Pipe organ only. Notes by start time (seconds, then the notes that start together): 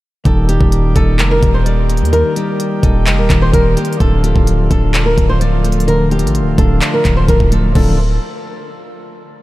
0.25 D#3 G3 A#3 G4
4.00 D3 F3 A3 F4
7.76 D3 F3 A3 F4